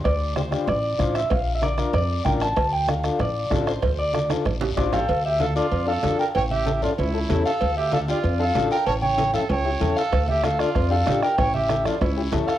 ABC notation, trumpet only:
X:1
M:4/4
L:1/8
Q:1/4=191
K:Dm
V:1 name="Trumpet"
z8 | z8 | z8 | z6 z A- |
A G A F2 A2 B | ^c G2 F E3 A- | A G A F2 A2 B | ^c c2 A c3 A- |
A G A F2 A2 B | ^c G2 F E3 A |]